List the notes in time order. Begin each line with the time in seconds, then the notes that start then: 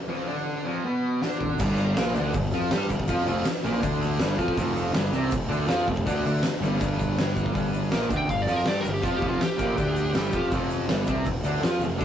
0.08 F2 F3
0.26 D3 D4
0.64 F2 F3
0.85 B2 B3
1.22 D3 D4, snare
1.41 floor tom
1.59 G1 G2 G3, kick, crash, shaker
1.77 shaker
1.96 A#1 A#2 A#3, snare, open hi-hat, shaker
2.15 D2 D3 D4, shaker
2.33 G1 G2, kick, open hi-hat, shaker
2.52 F2 F3 F4, shaker
2.71 G2 G3 G4, snare, open hi-hat, shaker
2.90 G1 G2, kick, shaker
3.00 kick
3.08 F2 F3 F4, kick, open hi-hat, shaker
3.26 F1 F2 F3, shaker
3.45 muted distorted electric guitar stroke, muted picked electric bass stroke, snare, open hi-hat, shaker
3.64 A#1 A#2 A#3, shaker
3.81 D2 D3 D4, kick, open hi-hat, shaker
4.02 shaker
4.19 G1 G2 G3, snare, open hi-hat, shaker
4.37 F2 F3 F4, kick, shaker
4.48 kick
4.57 F1 F2 F3, kick, open hi-hat, shaker
4.76 shaker
4.93 G1 G2 G3, snare, open hi-hat, shaker
5.12 C2 C3 C4, shaker
5.30 F1 F2, kick, open hi-hat, shaker
5.48 D2 D3 D4, shaker
5.67 F2 F3 F4, snare, open hi-hat, shaker
5.87 F1 F2, kick
5.97 kick
6.06 D2 D3 D4, kick, open hi-hat, shaker
6.25 D2 D3 D4, shaker
6.43 muted picked electric bass stroke, muted distorted electric guitar stroke, snare, open hi-hat, shaker
6.61 G1 G2 G3, shaker
6.80 G1 G2 G3, kick, open hi-hat, shaker
7.00 kick, shaker
7.19 snare, open hi-hat, shaker
7.37 kick, shaker
7.46 kick
7.53 G1 G2 G3, kick, open hi-hat, shaker
7.74 shaker
7.91 A#1 A#2 A#3, snare, open hi-hat, shaker
8.09 D2 D3 D4, kick, shaker
8.17 G5
8.27 G1 G2 F5, kick, open hi-hat, shaker
8.42 D5
8.46 F2 F3 F4, shaker
8.56 A#4
8.65 G2 G3 G4 D5, snare, open hi-hat, shaker
8.80 G2 A#4
8.85 G1, shaker
8.93 G4, shaker
9.01 F2 F3 F4, kick, open hi-hat, shaker
9.17 G4
9.21 F1 F2 F3, kick
9.28 F4
9.39 G4, muted distorted electric guitar stroke, muted picked electric bass stroke, snare, open hi-hat, shaker
9.57 A#1 A#2 A#3, kick, shaker
9.76 D2 D3 D4, kick, open hi-hat, shaker
9.96 shaker
10.13 G1 G2 G3, snare, open hi-hat, shaker
10.32 F2 F3 F4, kick, shaker
10.51 F1 F2 F3, kick, open hi-hat, shaker
10.70 shaker
10.88 G1 G2 G3, snare, open hi-hat, shaker
11.06 C2 C3 C4, kick, shaker
11.25 F1 F2, kick, open hi-hat, shaker
11.43 D2 D3 D4, shaker
11.54 shaker
11.61 F2 F3 F4, snare, open hi-hat, shaker
11.80 F1 F2, shaker
11.92 shaker
11.98 D2 D3 D4, kick, open hi-hat, shaker